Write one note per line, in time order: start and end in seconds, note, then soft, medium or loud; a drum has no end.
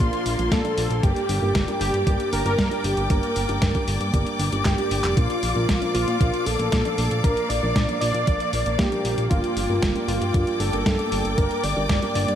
0.00 0.11 A#1 loud
0.00 0.35 A#2 medium
0.00 0.35 F3 medium
0.00 0.35 A#3 medium
0.00 5.13 A#3 medium
0.00 0.35 D4 medium
0.00 0.53 F4 loud
0.00 0.35 A#4 medium
0.00 0.99 D5 medium
0.00 0.99 F5 medium
0.00 1.01 C6 medium
0.00 kick loud
0.00 closed hi-hat medium
0.13 closed hi-hat soft
0.26 0.37 A#1 medium
0.26 open hi-hat loud
0.38 0.50 A#1 medium
0.38 0.61 A#2 medium
0.38 0.61 F3 medium
0.38 0.61 A#3 medium
0.38 0.61 D4 medium
0.38 0.61 A#4 medium
0.38 closed hi-hat soft
0.52 0.63 A#2 loud
0.52 1.05 A4 loud
0.52 kick loud
0.52 snare loud
0.52 closed hi-hat medium
0.64 1.00 A#2 medium
0.64 1.00 F3 medium
0.64 1.00 A#3 medium
0.64 1.00 D4 medium
0.64 1.00 D5 loud
0.64 closed hi-hat soft
0.77 0.88 A#1 medium
0.77 open hi-hat loud
0.90 1.01 A#1 medium
0.90 closed hi-hat soft
1.03 1.14 G1 loud
1.03 1.21 G2 medium
1.03 1.21 G3 medium
1.03 1.21 A#3 medium
1.03 1.21 D4 medium
1.03 1.80 G4 loud
1.03 1.21 A#4 medium
1.03 9.27 D5 medium
1.03 5.13 G5 medium
1.03 9.27 D6 medium
1.03 kick loud
1.03 closed hi-hat medium
1.16 closed hi-hat soft
1.29 1.40 G1 medium
1.29 open hi-hat loud
1.42 1.53 G1 medium
1.42 1.65 G2 medium
1.42 1.65 G3 medium
1.42 1.65 A#3 medium
1.42 1.65 D4 medium
1.42 1.65 A#4 loud
1.55 1.66 G1 loud
1.55 kick loud
1.55 snare loud
1.55 closed hi-hat medium
1.68 1.96 G2 loud
1.68 1.96 G3 medium
1.68 1.96 A#3 medium
1.68 1.96 D4 medium
1.68 1.96 A#4 loud
1.68 closed hi-hat soft
1.81 1.92 G1 medium
1.81 2.29 G4 medium
1.81 open hi-hat loud
1.94 2.05 G2 medium
1.94 closed hi-hat soft
2.06 2.18 G1 loud
2.06 2.42 G2 medium
2.06 2.42 G3 medium
2.06 2.42 A#3 medium
2.06 2.42 D4 medium
2.06 2.42 A#4 medium
2.06 kick loud
2.06 closed hi-hat medium
2.20 closed hi-hat soft
2.33 2.44 G1 medium
2.33 2.45 A#4 medium
2.33 open hi-hat loud
2.45 2.56 G1 medium
2.45 2.68 G2 medium
2.45 2.68 G3 medium
2.45 2.68 A#3 medium
2.45 2.68 D4 medium
2.45 2.68 A#4 medium
2.45 2.86 A#4 loud
2.45 closed hi-hat soft
2.59 2.70 G2 loud
2.59 kick loud
2.59 snare loud
2.59 closed hi-hat medium
2.71 3.07 G2 medium
2.71 3.07 G3 medium
2.71 3.07 A#3 medium
2.71 3.07 D4 medium
2.71 3.07 A#4 loud
2.71 closed hi-hat soft
2.84 2.95 G1 medium
2.84 3.12 G4 medium
2.84 open hi-hat loud
2.97 3.08 G1 medium
2.97 closed hi-hat soft
3.10 3.21 G1 loud
3.10 3.28 G2 medium
3.10 3.28 G3 medium
3.10 3.28 A#3 medium
3.10 3.28 D4 medium
3.10 3.28 A#4 medium
3.10 3.88 A#4 loud
3.10 kick loud
3.10 closed hi-hat medium
3.23 closed hi-hat soft
3.36 3.47 G1 medium
3.36 open hi-hat loud
3.49 3.60 G1 medium
3.49 3.72 G2 medium
3.49 3.72 G3 medium
3.49 3.72 A#3 medium
3.49 3.72 D4 medium
3.49 3.72 A#4 medium
3.49 closed hi-hat soft
3.62 3.73 G1 loud
3.62 kick loud
3.62 snare loud
3.62 closed hi-hat medium
3.75 4.03 G2 medium
3.75 4.03 G3 medium
3.75 4.03 A#3 medium
3.75 4.03 D4 medium
3.75 4.03 A#4 loud
3.75 kick medium
3.75 closed hi-hat soft
3.88 3.99 G1 medium
3.88 open hi-hat loud
4.01 4.12 G2 medium
4.01 closed hi-hat soft
4.14 4.25 G1 loud
4.14 4.49 G2 medium
4.14 4.49 G3 medium
4.14 4.49 A#3 medium
4.14 4.49 D4 medium
4.14 4.49 A#4 medium
4.14 kick loud
4.14 closed hi-hat medium
4.27 closed hi-hat soft
4.39 4.50 G1 medium
4.39 open hi-hat loud
4.52 4.63 G1 medium
4.52 4.75 G2 medium
4.52 4.75 G3 medium
4.52 4.75 A#3 medium
4.52 4.75 D4 medium
4.52 4.75 A#4 medium
4.52 closed hi-hat soft
4.65 4.76 G1 loud
4.65 5.19 G4 medium
4.65 kick loud
4.65 snare loud
4.65 clap loud
4.65 closed hi-hat medium
4.78 5.14 G2 medium
4.78 5.14 G3 medium
4.78 5.14 A#3 medium
4.78 5.14 D4 medium
4.78 5.14 A#4 loud
4.78 closed hi-hat soft
4.91 5.02 G1 medium
4.91 open hi-hat loud
5.04 5.15 F1 medium
5.04 clap medium
5.04 closed hi-hat soft
5.17 5.28 A#1 loud
5.17 5.35 A#2 medium
5.17 5.35 F3 medium
5.17 5.35 A#3 medium
5.17 12.35 A#3 medium
5.17 5.35 D4 medium
5.17 5.94 F4 loud
5.17 5.35 A#4 medium
5.17 9.27 F5 medium
5.17 kick loud
5.17 closed hi-hat medium
5.30 closed hi-hat soft
5.43 5.54 A#1 medium
5.43 open hi-hat medium
5.56 5.67 A#1 medium
5.56 5.79 A#2 medium
5.56 5.79 F3 medium
5.56 5.79 A#3 medium
5.56 5.79 D4 medium
5.56 5.79 A#4 loud
5.69 5.80 A#1 loud
5.69 kick loud
5.69 snare loud
5.69 closed hi-hat medium
5.82 6.10 A#2 medium
5.82 6.10 F3 medium
5.82 6.10 A#3 medium
5.82 6.10 D4 medium
5.82 6.10 A#4 loud
5.82 closed hi-hat soft
5.95 6.06 A#1 medium
5.95 6.48 F4 loud
5.95 open hi-hat loud
6.08 6.19 A#2 medium
6.08 closed hi-hat soft
6.20 6.32 A#1 loud
6.20 6.56 A#2 medium
6.20 6.56 F3 medium
6.20 6.56 A#3 medium
6.20 6.56 D4 medium
6.20 6.56 A#4 medium
6.20 kick loud
6.20 closed hi-hat medium
6.34 closed hi-hat soft
6.46 6.57 A#1 medium
6.46 7.25 A4 loud
6.46 open hi-hat loud
6.59 6.70 A#1 medium
6.59 6.82 A#2 medium
6.59 6.82 F3 medium
6.59 6.82 A#3 medium
6.59 6.82 D4 medium
6.59 6.82 A#4 medium
6.59 closed hi-hat soft
6.72 6.83 A#2 loud
6.72 kick loud
6.72 snare loud
6.72 closed hi-hat medium
6.85 7.21 A#2 medium
6.85 7.21 F3 medium
6.85 7.21 A#3 medium
6.85 7.21 D4 medium
6.85 7.21 D5 loud
6.85 closed hi-hat soft
6.98 7.09 A#1 medium
6.98 open hi-hat loud
7.11 7.22 A#1 medium
7.11 closed hi-hat soft
7.24 7.35 A#1 loud
7.24 7.41 A#2 medium
7.24 7.41 F3 medium
7.24 7.41 A#3 medium
7.24 7.41 D4 medium
7.24 7.49 A#4 loud
7.24 7.41 A#4 medium
7.24 kick loud
7.24 closed hi-hat medium
7.37 closed hi-hat soft
7.49 7.61 A#1 medium
7.49 7.98 D5 loud
7.49 open hi-hat medium
7.63 7.74 A#1 medium
7.63 7.85 A#2 medium
7.63 7.85 F3 medium
7.63 7.85 A#3 medium
7.63 7.85 D4 medium
7.63 7.85 A#4 medium
7.76 7.87 A#1 loud
7.76 kick loud
7.76 snare loud
7.76 closed hi-hat medium
7.88 8.17 A#2 loud
7.88 8.17 F3 medium
7.88 8.17 A#3 medium
7.88 8.17 D4 medium
7.88 8.17 A#4 loud
7.88 closed hi-hat soft
8.01 8.13 A#1 medium
8.01 8.80 D5 loud
8.01 open hi-hat loud
8.14 8.25 A#2 medium
8.14 closed hi-hat soft
8.27 8.38 A#1 loud
8.27 8.63 A#2 medium
8.27 8.63 F3 medium
8.27 8.63 A#3 medium
8.27 8.63 D4 medium
8.27 8.63 A#4 medium
8.27 kick loud
8.27 closed hi-hat medium
8.40 closed hi-hat soft
8.53 8.64 A#1 medium
8.53 open hi-hat loud
8.66 8.77 A#1 medium
8.66 8.89 A#2 medium
8.66 8.89 F3 medium
8.66 8.89 A#3 medium
8.66 8.89 D4 medium
8.66 8.89 A#4 medium
8.66 closed hi-hat soft
8.78 8.90 A#2 loud
8.78 9.29 G4 loud
8.78 kick loud
8.78 snare loud
8.78 closed hi-hat medium
8.92 9.28 A#2 medium
8.92 9.28 F3 medium
8.92 9.28 A#3 medium
8.92 9.28 D4 medium
8.92 9.28 A#4 loud
8.92 closed hi-hat soft
9.05 9.16 A#1 medium
9.05 open hi-hat loud
9.18 9.29 A#1 medium
9.18 closed hi-hat soft
9.30 9.42 G1 loud
9.30 9.48 G2 medium
9.30 9.48 G3 medium
9.30 9.48 A#3 medium
9.30 9.48 D4 medium
9.30 10.04 F4 loud
9.30 9.48 A#4 medium
9.30 12.35 D5 medium
9.30 12.35 G5 medium
9.30 12.35 D6 medium
9.30 kick loud
9.30 closed hi-hat medium
9.44 closed hi-hat soft
9.56 9.68 G1 medium
9.56 open hi-hat medium
9.69 9.81 G1 medium
9.69 9.92 G2 medium
9.69 9.92 G3 medium
9.69 9.92 A#3 medium
9.69 9.92 D4 medium
9.69 9.92 A#4 loud
9.82 9.94 G1 loud
9.82 kick loud
9.82 snare loud
9.82 closed hi-hat medium
9.95 10.24 G2 medium
9.95 10.24 G3 medium
9.95 10.24 A#3 medium
9.95 10.24 D4 medium
9.95 10.24 A#4 loud
9.95 closed hi-hat soft
10.08 10.19 G1 medium
10.08 10.61 F4 medium
10.08 open hi-hat medium
10.21 10.32 G2 medium
10.21 closed hi-hat soft
10.34 10.45 G1 loud
10.34 10.70 G2 medium
10.34 10.70 G3 medium
10.34 10.70 A#3 medium
10.34 10.70 D4 medium
10.34 10.70 A#4 medium
10.34 kick loud
10.34 closed hi-hat medium
10.47 closed hi-hat soft
10.60 10.71 G1 medium
10.60 11.39 A4 loud
10.60 open hi-hat loud
10.73 10.84 G1 medium
10.73 10.96 G2 medium
10.73 10.96 G3 medium
10.73 10.96 A#3 medium
10.73 10.96 D4 medium
10.73 10.96 A#4 medium
10.73 closed hi-hat soft
10.86 10.97 G2 loud
10.86 kick loud
10.86 snare loud
10.86 closed hi-hat medium
10.99 11.35 G2 medium
10.99 11.35 G3 medium
10.99 11.35 A#3 medium
10.99 11.35 D4 medium
10.99 11.35 G4 loud
10.99 closed hi-hat soft
11.12 11.23 G1 medium
11.12 open hi-hat medium
11.25 11.36 G1 medium
11.25 closed hi-hat soft
11.37 11.49 G1 loud
11.37 11.55 G2 medium
11.37 11.55 G3 medium
11.37 11.55 A#3 medium
11.37 11.55 D4 medium
11.37 11.65 A#4 loud
11.37 11.55 A#4 medium
11.37 kick loud
11.37 closed hi-hat medium
11.51 closed hi-hat soft
11.64 11.75 G1 medium
11.64 12.15 D5 loud
11.64 open hi-hat loud
11.76 11.88 G1 medium
11.76 11.99 G2 medium
11.76 11.99 G3 medium
11.76 11.99 A#3 medium
11.76 11.99 D4 medium
11.76 11.99 A#4 medium
11.89 12.01 G1 loud
11.89 kick loud
11.89 snare loud
11.89 closed hi-hat medium
12.02 12.30 G2 loud
12.02 12.30 G3 medium
12.02 12.30 A#3 medium
12.02 12.30 D4 medium
12.02 12.30 A#4 loud
12.02 closed hi-hat soft
12.15 12.26 G1 medium
12.15 12.35 D5 loud
12.15 open hi-hat loud
12.28 12.35 G2 medium
12.28 closed hi-hat soft